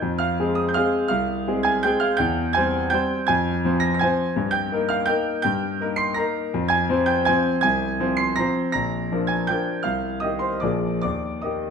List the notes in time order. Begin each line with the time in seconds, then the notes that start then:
0.02 F2
0.18 F5 F6
0.40 G#3 C4 G#4
0.55 D#6
0.69 G6
0.74 G#3 C4 G#4 F5 F6
1.08 C2 F5 F6
1.47 G#3 C4 G#4
1.63 G#5 G#6
1.83 G#3 C4 G#4 G5 G6
2.00 F5 F6
2.17 E2 G5 G6
2.53 G3 C4 C5 G#5 G#6
2.90 G3 C4 C5 G5 G6
3.27 F2 G#5 G#6
3.65 F3 C4 C5
3.80 A#6
3.94 A#6
3.99 F3 C4 C5 G#5 G#6
4.36 G2
4.51 G5 G6
4.72 A#3 D#4 A#4
4.89 F5 F6
5.06 A#3 D#4 A#4 G5 G6
5.42 G2 G5 G6
5.81 A#3 D#4 A#4
5.96 C6 C7
6.14 A#3 D#4 A#4 A#5 A#6
6.54 F2
6.68 G#5 G#6
6.89 F3 C4 C5
7.06 G5 G6
7.25 F3 C4 C5 G#5 G#6
7.61 C2 G#5 G#6
8.00 F3 C4 C5
8.17 C6 C7
8.36 F3 C4 C5 A#5 A#6
8.72 A#1 A#5 A#6
9.12 F3 D4 A#4
9.27 G#5 G#6
9.47 F3 D4 A#4 G5 G6
9.83 C2 F5 F6
10.20 D#3 D#4 D#5 D#6
10.24 G4
10.39 C5 C6
10.60 A#1 F3 A#3 G#4 D5 D6
11.02 D#2 D5 D6
11.42 D#3 A#3 G4 D#5 D#6